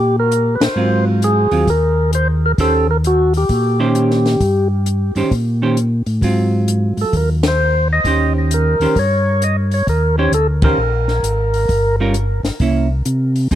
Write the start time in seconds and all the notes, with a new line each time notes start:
Already playing: A#2 G4
0.20 A#4
0.32 closed hi-hat
0.55 B4
0.60 A#2 C5, snare, ride
0.76 G#2 F#3 C4 F4
1.22 G#4, closed hi-hat
1.51 D#2 F#3 C4 F4, open hi-hat
1.67 D#2 A#4, kick, open hi-hat
2.13 C5, closed hi-hat
2.46 A#4
2.58 D#2 D#3 C#4 G4 A4 C5, kick, open hi-hat
2.91 A#4
3.04 F#4, closed hi-hat
3.34 G4, open hi-hat
3.49 A#2, kick, open hi-hat
3.80 D#3 C#4 G4 C5
3.95 closed hi-hat
4.11 snare
4.26 snare, open hi-hat
4.41 G2, kick, open hi-hat
4.86 closed hi-hat
5.15 G2 D#3 C#4 G4 C5, open hi-hat
5.31 A#2, kick, open hi-hat
5.62 D#3 C#4 G4 C5
5.77 closed hi-hat
6.06 A2, open hi-hat
6.22 G#2 F#3 C4 F4, kick, open hi-hat
6.68 closed hi-hat
6.97 G#2, open hi-hat
7.01 A4
7.13 D#2 A#4, kick, open hi-hat
7.43 snare, ride
7.48 C5
7.93 D#5
8.04 D#2 D#3 C#4 G4 C5, kick, open hi-hat
8.51 A#4, closed hi-hat
8.80 D#2 D#3 C#4 G4 C5, open hi-hat
8.95 G2 C#5, kick, open hi-hat
9.42 D#5, closed hi-hat
9.71 C#5, open hi-hat
9.87 D#2 A#4, kick, open hi-hat
10.18 D#3 C#4 G4 C5 C#5
10.32 D2 A4, closed hi-hat
10.62 D#3 C#4 G4 A#4 C5, kick, ride
10.77 A#1
11.08 snare
11.23 G#1, closed hi-hat
11.54 open hi-hat
11.69 G1, kick, open hi-hat
12.00 G3 C#4 F4 A#4
12.14 closed hi-hat
12.43 G1, snare, open hi-hat
12.60 C2 A#3 C#4 E4, kick, open hi-hat
13.05 C3, closed hi-hat
13.36 open hi-hat
13.51 F2 F3 C4, kick, open hi-hat